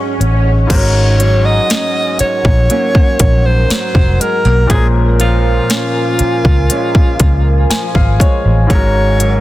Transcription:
Already playing: grand piano G#2 G#3 C#4 F#4 A#4, nylon-string guitar G#2 F#3 C#4 D#4, ambient pad G#4 D#5 F#5 C#6, swell
0.20 fingered electric bass A1, nylon-string guitar C#4, closed hi-hat
0.67 fingered electric bass G#1, grand piano G#2 G#3 C#4, nylon-string guitar G#2, ambient pad A#4 F#5 G#5, alto saxophone C#5, kick, closed hi-hat, crash
0.73 grand piano F#4 A#4
1.20 nylon-string guitar F#3, closed hi-hat
1.46 alto saxophone D#5
1.70 nylon-string guitar C#4, snare, closed hi-hat
2.19 alto saxophone C#5, muted fingered electric bass stroke, closed hi-hat
2.45 fingered electric bass A#1, kick
2.70 nylon-string guitar F#3 A#3 C#4, ambient pad A#5, closed hi-hat
2.95 kick
3.19 fingered electric bass A#1, kick, closed hi-hat
3.46 alto saxophone C5
3.70 nylon-string guitar F#3, snare, closed hi-hat
3.95 fingered electric bass F1, kick
4.20 nylon-string guitar G#3, alto saxophone A#4, closed hi-hat
4.45 fingered electric bass B1, nylon-string guitar A#3
4.67 grand piano A#2 G#3 C5, nylon-string guitar A#2, alto saxophone G#4, ambient pad F5 G#5, kick, closed hi-hat
4.73 grand piano C#4 A#4
5.20 nylon-string guitar F3, alto saxophone F4, closed hi-hat
5.70 nylon-string guitar C#4, snare, closed hi-hat
6.19 muted fingered electric bass stroke, closed hi-hat
6.45 fingered electric bass C#2, kick
6.70 nylon-string guitar F3 G#3 C#4, closed hi-hat
6.95 kick
7.20 fingered electric bass C#2, kick, closed hi-hat
7.70 nylon-string guitar F3, grand piano G#5, snare, closed hi-hat
7.95 fingered electric bass G#1, grand piano F5, kick
8.20 nylon-string guitar G#3, grand piano C#5, kick, closed hi-hat
8.45 fingered electric bass A1
8.67 grand piano G#2 G#3 C#4, nylon-string guitar G#2, ambient pad A#4 F#5 G#5, kick, closed hi-hat
8.71 grand piano F#4 A#4, alto saxophone C#5
9.20 nylon-string guitar F#3, closed hi-hat

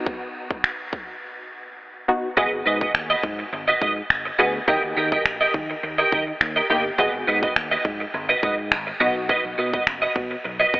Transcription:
Already playing: synth stab B3 D#4 F#4
0.06 kick
0.51 kick
0.64 finger snap
0.93 kick
2.08 synth stab B3 D#4 F#4
2.37 fingered electric bass G#1, synth stab B3 F#4 G#4, clean electric guitar F#4 B4 D#5, kick
2.52 fingered electric bass G#1, muted clean electric guitar stroke
2.66 fingered electric bass G#2, clean electric guitar F#4 B4 D#5
2.81 clean electric guitar F#4 B4 D#5, kick
2.95 fingered electric bass D#2, finger snap, muted clean electric guitar stroke
3.10 clean electric guitar F#4 B4 D#5
3.23 fingered electric bass G#2, muted clean electric guitar stroke, kick
3.39 muted clean electric guitar stroke
3.53 fingered electric bass G#1, muted clean electric guitar stroke
3.68 clean electric guitar F#4 B4 D#5
3.81 fingered electric bass G#2, clean electric guitar F#4 B4 D#5, kick
3.97 muted clean electric guitar stroke
4.10 fingered electric bass G#1, finger snap
4.25 muted clean electric guitar stroke
4.39 fingered electric bass D2, synth stab B3 F#4 G#4, clean electric guitar F#4 B4 D#5
4.54 muted clean electric guitar stroke
4.68 fingered electric bass D#2, synth stab A#3 D#4 G4, clean electric guitar G4 A#4 D#5, kick
4.83 fingered electric bass D#2, muted clean electric guitar stroke
4.97 fingered electric bass D#3, clean electric guitar G4 A#4 D#5
5.12 clean electric guitar G4 A#4 D#5, kick
5.26 fingered electric bass A#1, finger snap, muted clean electric guitar stroke
5.41 clean electric guitar G4 A#4 D#5
5.54 fingered electric bass D#3, muted clean electric guitar stroke, kick
5.70 muted clean electric guitar stroke
5.83 fingered electric bass D#2, muted clean electric guitar stroke
5.98 clean electric guitar G4 A#4 D#5
6.12 fingered electric bass D#3, clean electric guitar G4 A#4 D#5, kick
6.27 muted clean electric guitar stroke
6.41 fingered electric bass D#2, finger snap, muted clean electric guitar stroke
6.56 clean electric guitar G4 A#4 D#5
6.70 fingered electric bass G1, synth stab A#3 D#4 G4, clean electric guitar G4 A#4 D#5
6.85 muted clean electric guitar stroke
6.98 fingered electric bass G#1, synth stab B3 F#4 G#4, clean electric guitar F#4 B4 D#5, kick
7.14 fingered electric bass G#1, muted clean electric guitar stroke
7.27 fingered electric bass G#2, clean electric guitar F#4 B4 D#5
7.43 clean electric guitar F#4 B4 D#5, kick
7.56 fingered electric bass D#2, finger snap, muted clean electric guitar stroke
7.71 clean electric guitar F#4 B4 D#5
7.85 fingered electric bass G#2, muted clean electric guitar stroke, kick
8.00 muted clean electric guitar stroke
8.14 fingered electric bass G#1, muted clean electric guitar stroke
8.29 clean electric guitar F#4 B4 D#5
8.43 fingered electric bass G#2, clean electric guitar F#4 B4 D#5, kick
8.72 fingered electric bass G#1, finger snap
8.87 muted clean electric guitar stroke
9.00 fingered electric bass B1, synth stab B3 D#4 F#4, clean electric guitar F#4 B4 D#5
9.16 muted clean electric guitar stroke
9.29 clean electric guitar F#4 B4 D#5, kick
9.45 fingered electric bass B1, muted clean electric guitar stroke
9.58 fingered electric bass B2, clean electric guitar F#4 B4 D#5
9.73 clean electric guitar F#4 B4 D#5, kick
9.87 fingered electric bass F#1, finger snap, muted clean electric guitar stroke
10.02 clean electric guitar F#4 B4 D#5
10.16 fingered electric bass B2, muted clean electric guitar stroke, kick
10.31 muted clean electric guitar stroke
10.45 fingered electric bass B1, muted clean electric guitar stroke
10.60 clean electric guitar F#4 B4 D#5
10.73 fingered electric bass B2, clean electric guitar F#4 B4 D#5, kick

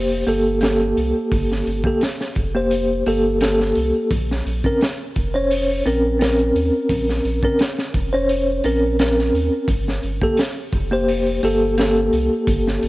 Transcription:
Already playing: sub bass F1, tine electric piano A#3 G4 C5
0.27 sub bass G1, tine electric piano A#3 G4 A4, open hi-hat
0.61 tine electric piano A#3 G4 A4, snare, open hi-hat
0.80 closed hi-hat
0.97 sub bass C2, open hi-hat
1.32 sub bass G1, kick, open hi-hat
1.52 snare
1.67 sub bass G1, open hi-hat
1.84 tine electric piano A#3 G4 A4, kick
2.01 snare, open hi-hat
2.21 snare
2.35 sub bass F1, kick, open hi-hat
2.55 tine electric piano A#3 G4 C5
2.71 open hi-hat
3.06 sub bass G1, tine electric piano A#3 G4 A4, open hi-hat
3.41 tine electric piano A#3 G4 A4, snare, open hi-hat
3.60 snare
3.75 sub bass C2, open hi-hat
4.11 sub bass A#1, kick, open hi-hat
4.31 snare
4.46 sub bass A#1, open hi-hat
4.64 tine electric piano C4 C#4 A#4, kick
4.81 snare, open hi-hat
5.16 sub bass F1, kick, open hi-hat
5.34 tine electric piano C#4 C5 C#5
5.51 open hi-hat
5.86 sub bass A#1, tine electric piano C4 C#4 A#4, open hi-hat
6.19 tine electric piano C4 C#4 A#4, snare, open hi-hat
6.39 closed hi-hat
6.55 sub bass D#2, open hi-hat
6.89 sub bass A#1, kick, open hi-hat
7.09 snare
7.25 sub bass A#1, open hi-hat
7.43 tine electric piano C4 C#4 A#4, kick
7.59 snare, open hi-hat
7.79 snare
7.94 sub bass F1, kick, open hi-hat
8.13 tine electric piano C#4 C5 C#5
8.29 open hi-hat
8.64 sub bass A#1, tine electric piano C4 C#4 A#4, open hi-hat
8.99 tine electric piano C4 C#4 A#4, snare, open hi-hat
9.19 snare
9.34 sub bass D#2, open hi-hat
9.68 sub bass G1, kick, open hi-hat
9.88 snare
10.03 sub bass G1, open hi-hat
10.22 tine electric piano A#3 G4 A4, kick
10.37 snare, open hi-hat
10.73 sub bass F1, kick, open hi-hat
10.91 tine electric piano A#3 G4 C5
11.08 open hi-hat
11.43 sub bass G1, tine electric piano A#3 G4 A4, open hi-hat
11.78 tine electric piano A#3 G4 A4, snare, open hi-hat
11.96 closed hi-hat
12.13 sub bass C2, open hi-hat
12.47 sub bass G1, kick, open hi-hat
12.68 snare
12.83 sub bass G1, open hi-hat

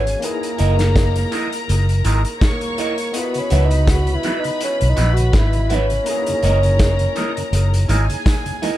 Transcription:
Already playing: fingered electric bass G#1, tine electric piano E3 B3 D#4 F#4, bassoon C#4, violin section G#4 G#5
0.07 closed hi-hat
0.19 tine electric piano A#3 D#4, violin section A#4 A#5, closed hi-hat
0.23 bassoon A#3, tine electric piano E4 G#4
0.43 closed hi-hat
0.58 fingered electric bass F#1, clean electric guitar E4 A#4 D#5, closed hi-hat
0.79 snare, closed hi-hat
0.96 kick, snare, closed hi-hat
1.16 closed hi-hat
1.32 clean electric guitar E4 A#4 D#5, closed hi-hat
1.52 muted clean electric guitar stroke, closed hi-hat
1.69 fingered electric bass F#1, closed hi-hat
1.89 closed hi-hat
2.04 fingered electric bass G#1, clean electric guitar E4 A#4 D#5, closed hi-hat
2.25 closed hi-hat
2.40 bassoon A#3, violin section C#5 C#6, kick, snare, closed hi-hat
2.61 closed hi-hat
2.78 clean electric guitar E4 A#4 D#5, closed hi-hat
2.98 closed hi-hat
3.12 tine electric piano B3 D#5, bassoon B3, violin section B4 B5, closed hi-hat
3.16 tine electric piano E4 F4
3.24 tine electric piano F#4
3.34 tonewheel organ C#3, closed hi-hat
3.40 bassoon C#4
3.50 fingered electric bass C#2, tonewheel organ E3 F#3 B3 D#4, clean electric guitar F#4 B4 E5, closed hi-hat
3.65 bassoon D#4
3.71 tonewheel organ C#3, closed hi-hat
3.87 bassoon F#4, kick, snare, closed hi-hat
4.07 tonewheel organ C#3, closed hi-hat
4.15 bassoon E4
4.23 tonewheel organ E3 F#3 B3 D#4, clean electric guitar F#4 B4 E5, closed hi-hat
4.39 bassoon D#4
4.44 tonewheel organ C#3, muted clean electric guitar stroke, closed hi-hat
4.61 bassoon C#4, closed hi-hat
4.81 fingered electric bass B1, tonewheel organ C#3, closed hi-hat
4.89 bassoon D#4
4.96 fingered electric bass A#1, tonewheel organ E3 F#3 B3 D#4, clean electric guitar F#4 B4 E5, closed hi-hat
5.13 bassoon F#4, closed hi-hat
5.19 tonewheel organ C#3
5.33 fingered electric bass G#1, kick, snare, closed hi-hat
5.38 bassoon E4
5.53 tonewheel organ C#3, closed hi-hat
5.70 tonewheel organ E3 F#3 B3 D#4, clean electric guitar F#4 B4 E5, closed hi-hat
5.75 bassoon C#4
5.90 tonewheel organ C#3, closed hi-hat
6.04 tine electric piano A#3 D#4, violin section A#4 A#5, closed hi-hat
6.08 tine electric piano E4 G#4
6.26 tonewheel organ F#2 C#3, closed hi-hat
6.43 fingered electric bass F#1, tonewheel organ E3 G#3 A#3 D#4, clean electric guitar E4 A#4 D#5, closed hi-hat
6.63 tonewheel organ F#2 C#3, closed hi-hat
6.79 kick, snare, closed hi-hat
6.99 tonewheel organ F#2 C#3, closed hi-hat
7.15 tonewheel organ E3 G#3 A#3 D#4, clean electric guitar E4 A#4 D#5, closed hi-hat
7.36 tonewheel organ F#2 C#3, muted clean electric guitar stroke, closed hi-hat
7.52 fingered electric bass F#1, closed hi-hat
7.73 tonewheel organ F#2 C#3, closed hi-hat
7.89 fingered electric bass G#1, tonewheel organ E3 G#3 A#3 D#4, clean electric guitar E4 A#4 D#5, violin section G#4 G#5, closed hi-hat
8.10 tonewheel organ F#2 C#3, closed hi-hat
8.26 kick, snare, closed hi-hat
8.46 tonewheel organ F#2 C#3, closed hi-hat
8.62 tonewheel organ E3 G#3 A#3 D#4, clean electric guitar E4 A#4 D#5, closed hi-hat

